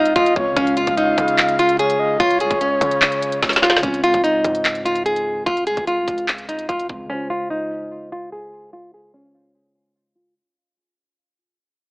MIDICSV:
0, 0, Header, 1, 6, 480
1, 0, Start_track
1, 0, Key_signature, -5, "major"
1, 0, Tempo, 408163
1, 667, Time_signature, 4, 2, 24, 8
1, 14000, End_track
2, 0, Start_track
2, 0, Title_t, "Soft synth lead"
2, 0, Program_c, 0, 80
2, 0, Note_on_c, 0, 77, 110
2, 140, Note_off_c, 0, 77, 0
2, 185, Note_on_c, 0, 75, 93
2, 414, Note_off_c, 0, 75, 0
2, 423, Note_on_c, 0, 73, 104
2, 653, Note_off_c, 0, 73, 0
2, 661, Note_on_c, 0, 77, 118
2, 2056, Note_off_c, 0, 77, 0
2, 2108, Note_on_c, 0, 73, 93
2, 2335, Note_off_c, 0, 73, 0
2, 2344, Note_on_c, 0, 75, 87
2, 2573, Note_off_c, 0, 75, 0
2, 2594, Note_on_c, 0, 73, 120
2, 4463, Note_off_c, 0, 73, 0
2, 14000, End_track
3, 0, Start_track
3, 0, Title_t, "Nylon-string guitar"
3, 0, Program_c, 1, 24
3, 0, Note_on_c, 1, 63, 78
3, 152, Note_off_c, 1, 63, 0
3, 185, Note_on_c, 1, 65, 87
3, 391, Note_off_c, 1, 65, 0
3, 664, Note_on_c, 1, 61, 114
3, 871, Note_off_c, 1, 61, 0
3, 906, Note_on_c, 1, 65, 85
3, 1112, Note_off_c, 1, 65, 0
3, 1145, Note_on_c, 1, 63, 88
3, 1822, Note_off_c, 1, 63, 0
3, 1872, Note_on_c, 1, 65, 90
3, 2075, Note_off_c, 1, 65, 0
3, 2109, Note_on_c, 1, 68, 89
3, 2559, Note_off_c, 1, 68, 0
3, 2586, Note_on_c, 1, 65, 121
3, 2792, Note_off_c, 1, 65, 0
3, 2833, Note_on_c, 1, 68, 83
3, 3035, Note_off_c, 1, 68, 0
3, 3068, Note_on_c, 1, 61, 88
3, 4220, Note_off_c, 1, 61, 0
3, 4261, Note_on_c, 1, 65, 75
3, 4469, Note_off_c, 1, 65, 0
3, 4502, Note_on_c, 1, 61, 89
3, 4709, Note_off_c, 1, 61, 0
3, 4747, Note_on_c, 1, 65, 86
3, 4952, Note_off_c, 1, 65, 0
3, 4983, Note_on_c, 1, 63, 82
3, 5661, Note_off_c, 1, 63, 0
3, 5709, Note_on_c, 1, 65, 86
3, 5913, Note_off_c, 1, 65, 0
3, 5947, Note_on_c, 1, 68, 74
3, 6398, Note_off_c, 1, 68, 0
3, 6424, Note_on_c, 1, 65, 99
3, 6631, Note_off_c, 1, 65, 0
3, 6666, Note_on_c, 1, 68, 83
3, 6872, Note_off_c, 1, 68, 0
3, 6908, Note_on_c, 1, 65, 70
3, 7358, Note_off_c, 1, 65, 0
3, 7627, Note_on_c, 1, 63, 76
3, 7832, Note_off_c, 1, 63, 0
3, 7865, Note_on_c, 1, 65, 81
3, 8071, Note_off_c, 1, 65, 0
3, 8345, Note_on_c, 1, 61, 110
3, 8551, Note_off_c, 1, 61, 0
3, 8585, Note_on_c, 1, 65, 83
3, 8791, Note_off_c, 1, 65, 0
3, 8824, Note_on_c, 1, 63, 88
3, 9502, Note_off_c, 1, 63, 0
3, 9552, Note_on_c, 1, 65, 84
3, 9755, Note_off_c, 1, 65, 0
3, 9788, Note_on_c, 1, 68, 81
3, 10239, Note_off_c, 1, 68, 0
3, 10267, Note_on_c, 1, 65, 118
3, 10472, Note_off_c, 1, 65, 0
3, 10512, Note_on_c, 1, 68, 79
3, 10715, Note_off_c, 1, 68, 0
3, 10747, Note_on_c, 1, 61, 82
3, 11900, Note_off_c, 1, 61, 0
3, 11942, Note_on_c, 1, 65, 69
3, 12149, Note_off_c, 1, 65, 0
3, 14000, End_track
4, 0, Start_track
4, 0, Title_t, "Tine electric piano"
4, 0, Program_c, 2, 4
4, 0, Control_c, 2, 64, 127
4, 0, Note_on_c, 2, 49, 71
4, 0, Note_on_c, 2, 56, 64
4, 0, Note_on_c, 2, 60, 64
4, 0, Note_on_c, 2, 65, 78
4, 351, Note_off_c, 2, 49, 0
4, 369, Note_off_c, 2, 56, 0
4, 388, Note_off_c, 2, 60, 0
4, 404, Note_on_c, 2, 49, 54
4, 406, Note_off_c, 2, 65, 0
4, 422, Note_on_c, 2, 56, 52
4, 441, Note_on_c, 2, 60, 52
4, 460, Note_on_c, 2, 65, 62
4, 597, Note_off_c, 2, 49, 0
4, 611, Note_on_c, 2, 49, 72
4, 634, Note_off_c, 2, 56, 0
4, 649, Note_on_c, 2, 56, 65
4, 674, Note_off_c, 2, 60, 0
4, 682, Control_c, 2, 64, 0
4, 683, Note_off_c, 2, 65, 0
4, 685, Note_on_c, 2, 61, 69
4, 722, Note_on_c, 2, 65, 81
4, 857, Control_c, 2, 64, 127
4, 4432, Note_off_c, 2, 49, 0
4, 4449, Note_on_c, 2, 49, 67
4, 4450, Note_off_c, 2, 56, 0
4, 4469, Note_off_c, 2, 61, 0
4, 4487, Note_off_c, 2, 65, 0
4, 4487, Note_on_c, 2, 56, 61
4, 4524, Control_c, 2, 64, 0
4, 4525, Note_on_c, 2, 60, 63
4, 4561, Note_on_c, 2, 65, 74
4, 4694, Control_c, 2, 64, 127
4, 8031, Note_off_c, 2, 49, 0
4, 8050, Note_off_c, 2, 56, 0
4, 8069, Note_off_c, 2, 60, 0
4, 8084, Note_on_c, 2, 49, 53
4, 8087, Note_off_c, 2, 65, 0
4, 8103, Note_on_c, 2, 56, 49
4, 8122, Note_on_c, 2, 60, 48
4, 8140, Note_on_c, 2, 65, 59
4, 8277, Note_off_c, 2, 49, 0
4, 8291, Note_on_c, 2, 49, 70
4, 8315, Note_off_c, 2, 56, 0
4, 8329, Note_on_c, 2, 56, 59
4, 8354, Note_off_c, 2, 60, 0
4, 8360, Control_c, 2, 64, 0
4, 8363, Note_off_c, 2, 65, 0
4, 8365, Note_on_c, 2, 72, 66
4, 8403, Note_on_c, 2, 65, 76
4, 8588, Control_c, 2, 64, 127
4, 12112, Note_off_c, 2, 49, 0
4, 12131, Note_off_c, 2, 56, 0
4, 12149, Note_off_c, 2, 72, 0
4, 12167, Note_off_c, 2, 65, 0
4, 12204, Control_c, 2, 64, 0
4, 14000, End_track
5, 0, Start_track
5, 0, Title_t, "808-style bass"
5, 0, Program_c, 3, 38
5, 0, Note_on_c, 3, 37, 105
5, 157, Note_off_c, 3, 37, 0
5, 186, Note_on_c, 3, 37, 112
5, 417, Note_off_c, 3, 37, 0
5, 426, Note_on_c, 3, 37, 108
5, 657, Note_off_c, 3, 37, 0
5, 666, Note_on_c, 3, 37, 108
5, 906, Note_on_c, 3, 41, 99
5, 924, Note_off_c, 3, 37, 0
5, 1020, Note_off_c, 3, 41, 0
5, 1026, Note_on_c, 3, 37, 102
5, 1372, Note_off_c, 3, 37, 0
5, 1386, Note_on_c, 3, 49, 105
5, 2539, Note_off_c, 3, 49, 0
5, 2587, Note_on_c, 3, 37, 107
5, 2827, Note_on_c, 3, 36, 103
5, 2844, Note_off_c, 3, 37, 0
5, 2941, Note_off_c, 3, 36, 0
5, 2948, Note_on_c, 3, 37, 105
5, 3293, Note_off_c, 3, 37, 0
5, 3307, Note_on_c, 3, 49, 104
5, 3998, Note_off_c, 3, 49, 0
5, 4029, Note_on_c, 3, 37, 109
5, 4489, Note_off_c, 3, 37, 0
5, 4508, Note_on_c, 3, 37, 108
5, 4747, Note_on_c, 3, 41, 96
5, 4765, Note_off_c, 3, 37, 0
5, 4861, Note_off_c, 3, 41, 0
5, 4868, Note_on_c, 3, 37, 105
5, 5213, Note_off_c, 3, 37, 0
5, 5227, Note_on_c, 3, 44, 99
5, 6380, Note_off_c, 3, 44, 0
5, 6427, Note_on_c, 3, 37, 103
5, 6667, Note_on_c, 3, 36, 96
5, 6684, Note_off_c, 3, 37, 0
5, 6781, Note_off_c, 3, 36, 0
5, 6788, Note_on_c, 3, 37, 108
5, 7026, Note_on_c, 3, 36, 102
5, 7044, Note_off_c, 3, 37, 0
5, 7140, Note_off_c, 3, 36, 0
5, 7146, Note_on_c, 3, 37, 99
5, 7838, Note_off_c, 3, 37, 0
5, 7868, Note_on_c, 3, 37, 106
5, 8097, Note_off_c, 3, 37, 0
5, 8108, Note_on_c, 3, 37, 104
5, 8338, Note_off_c, 3, 37, 0
5, 14000, End_track
6, 0, Start_track
6, 0, Title_t, "Drums"
6, 64, Note_on_c, 9, 42, 62
6, 182, Note_off_c, 9, 42, 0
6, 186, Note_on_c, 9, 36, 104
6, 186, Note_on_c, 9, 42, 81
6, 304, Note_off_c, 9, 36, 0
6, 304, Note_off_c, 9, 42, 0
6, 309, Note_on_c, 9, 42, 62
6, 426, Note_on_c, 9, 36, 100
6, 427, Note_off_c, 9, 42, 0
6, 544, Note_off_c, 9, 36, 0
6, 665, Note_on_c, 9, 42, 75
6, 666, Note_on_c, 9, 36, 127
6, 783, Note_off_c, 9, 36, 0
6, 783, Note_off_c, 9, 42, 0
6, 788, Note_on_c, 9, 42, 58
6, 904, Note_off_c, 9, 42, 0
6, 904, Note_on_c, 9, 42, 82
6, 1021, Note_off_c, 9, 42, 0
6, 1024, Note_on_c, 9, 42, 53
6, 1026, Note_on_c, 9, 36, 98
6, 1142, Note_off_c, 9, 42, 0
6, 1144, Note_off_c, 9, 36, 0
6, 1147, Note_on_c, 9, 42, 71
6, 1264, Note_off_c, 9, 42, 0
6, 1385, Note_on_c, 9, 36, 101
6, 1389, Note_on_c, 9, 42, 82
6, 1503, Note_off_c, 9, 36, 0
6, 1505, Note_off_c, 9, 42, 0
6, 1505, Note_on_c, 9, 42, 59
6, 1622, Note_off_c, 9, 42, 0
6, 1627, Note_on_c, 9, 39, 120
6, 1627, Note_on_c, 9, 42, 79
6, 1744, Note_off_c, 9, 39, 0
6, 1745, Note_off_c, 9, 42, 0
6, 1746, Note_on_c, 9, 42, 57
6, 1863, Note_off_c, 9, 42, 0
6, 1870, Note_on_c, 9, 42, 89
6, 1986, Note_off_c, 9, 42, 0
6, 1986, Note_on_c, 9, 42, 62
6, 2104, Note_off_c, 9, 42, 0
6, 2108, Note_on_c, 9, 42, 79
6, 2226, Note_off_c, 9, 42, 0
6, 2231, Note_on_c, 9, 42, 64
6, 2348, Note_off_c, 9, 42, 0
6, 2587, Note_on_c, 9, 36, 127
6, 2587, Note_on_c, 9, 42, 75
6, 2705, Note_off_c, 9, 36, 0
6, 2705, Note_off_c, 9, 42, 0
6, 2711, Note_on_c, 9, 42, 57
6, 2826, Note_off_c, 9, 42, 0
6, 2826, Note_on_c, 9, 42, 82
6, 2943, Note_off_c, 9, 42, 0
6, 2947, Note_on_c, 9, 42, 51
6, 2948, Note_on_c, 9, 36, 98
6, 3064, Note_off_c, 9, 42, 0
6, 3065, Note_off_c, 9, 36, 0
6, 3069, Note_on_c, 9, 42, 68
6, 3186, Note_off_c, 9, 42, 0
6, 3307, Note_on_c, 9, 36, 100
6, 3311, Note_on_c, 9, 42, 84
6, 3424, Note_off_c, 9, 36, 0
6, 3426, Note_off_c, 9, 42, 0
6, 3426, Note_on_c, 9, 42, 58
6, 3544, Note_off_c, 9, 42, 0
6, 3548, Note_on_c, 9, 39, 113
6, 3548, Note_on_c, 9, 42, 77
6, 3665, Note_off_c, 9, 39, 0
6, 3666, Note_off_c, 9, 42, 0
6, 3669, Note_on_c, 9, 42, 54
6, 3786, Note_off_c, 9, 42, 0
6, 3792, Note_on_c, 9, 42, 88
6, 3908, Note_off_c, 9, 42, 0
6, 3908, Note_on_c, 9, 42, 61
6, 4025, Note_off_c, 9, 42, 0
6, 4028, Note_on_c, 9, 38, 66
6, 4029, Note_on_c, 9, 36, 104
6, 4030, Note_on_c, 9, 42, 79
6, 4108, Note_off_c, 9, 38, 0
6, 4108, Note_on_c, 9, 38, 64
6, 4146, Note_off_c, 9, 36, 0
6, 4147, Note_off_c, 9, 42, 0
6, 4152, Note_on_c, 9, 42, 63
6, 4188, Note_off_c, 9, 38, 0
6, 4188, Note_on_c, 9, 38, 87
6, 4268, Note_off_c, 9, 38, 0
6, 4268, Note_on_c, 9, 38, 79
6, 4270, Note_off_c, 9, 42, 0
6, 4348, Note_off_c, 9, 38, 0
6, 4348, Note_on_c, 9, 38, 103
6, 4428, Note_off_c, 9, 38, 0
6, 4428, Note_on_c, 9, 38, 99
6, 4508, Note_on_c, 9, 36, 122
6, 4508, Note_on_c, 9, 42, 72
6, 4546, Note_off_c, 9, 38, 0
6, 4626, Note_off_c, 9, 36, 0
6, 4626, Note_off_c, 9, 42, 0
6, 4632, Note_on_c, 9, 42, 55
6, 4746, Note_off_c, 9, 42, 0
6, 4746, Note_on_c, 9, 42, 79
6, 4864, Note_off_c, 9, 42, 0
6, 4868, Note_on_c, 9, 42, 51
6, 4869, Note_on_c, 9, 36, 94
6, 4986, Note_off_c, 9, 36, 0
6, 4986, Note_off_c, 9, 42, 0
6, 4990, Note_on_c, 9, 42, 69
6, 5107, Note_off_c, 9, 42, 0
6, 5227, Note_on_c, 9, 36, 101
6, 5231, Note_on_c, 9, 42, 84
6, 5345, Note_off_c, 9, 36, 0
6, 5348, Note_off_c, 9, 42, 0
6, 5348, Note_on_c, 9, 42, 56
6, 5465, Note_off_c, 9, 42, 0
6, 5468, Note_on_c, 9, 39, 111
6, 5469, Note_on_c, 9, 42, 76
6, 5586, Note_off_c, 9, 39, 0
6, 5586, Note_off_c, 9, 42, 0
6, 5587, Note_on_c, 9, 42, 54
6, 5705, Note_off_c, 9, 42, 0
6, 5711, Note_on_c, 9, 42, 87
6, 5827, Note_off_c, 9, 42, 0
6, 5827, Note_on_c, 9, 42, 57
6, 5944, Note_off_c, 9, 42, 0
6, 5949, Note_on_c, 9, 42, 79
6, 6066, Note_off_c, 9, 42, 0
6, 6071, Note_on_c, 9, 42, 61
6, 6189, Note_off_c, 9, 42, 0
6, 6427, Note_on_c, 9, 36, 124
6, 6427, Note_on_c, 9, 42, 68
6, 6544, Note_off_c, 9, 42, 0
6, 6545, Note_off_c, 9, 36, 0
6, 6550, Note_on_c, 9, 42, 55
6, 6665, Note_off_c, 9, 42, 0
6, 6665, Note_on_c, 9, 42, 76
6, 6782, Note_off_c, 9, 42, 0
6, 6787, Note_on_c, 9, 42, 50
6, 6788, Note_on_c, 9, 36, 94
6, 6904, Note_off_c, 9, 42, 0
6, 6905, Note_off_c, 9, 36, 0
6, 6907, Note_on_c, 9, 42, 66
6, 7025, Note_off_c, 9, 42, 0
6, 7146, Note_on_c, 9, 36, 97
6, 7150, Note_on_c, 9, 42, 82
6, 7264, Note_off_c, 9, 36, 0
6, 7265, Note_off_c, 9, 42, 0
6, 7265, Note_on_c, 9, 42, 55
6, 7383, Note_off_c, 9, 42, 0
6, 7388, Note_on_c, 9, 39, 111
6, 7389, Note_on_c, 9, 42, 74
6, 7505, Note_off_c, 9, 39, 0
6, 7506, Note_off_c, 9, 42, 0
6, 7507, Note_on_c, 9, 42, 55
6, 7624, Note_off_c, 9, 42, 0
6, 7630, Note_on_c, 9, 42, 83
6, 7746, Note_off_c, 9, 42, 0
6, 7746, Note_on_c, 9, 42, 59
6, 7863, Note_off_c, 9, 42, 0
6, 7868, Note_on_c, 9, 36, 100
6, 7869, Note_on_c, 9, 42, 73
6, 7985, Note_off_c, 9, 36, 0
6, 7986, Note_off_c, 9, 42, 0
6, 7991, Note_on_c, 9, 42, 60
6, 8108, Note_on_c, 9, 36, 95
6, 8109, Note_off_c, 9, 42, 0
6, 8225, Note_off_c, 9, 36, 0
6, 14000, End_track
0, 0, End_of_file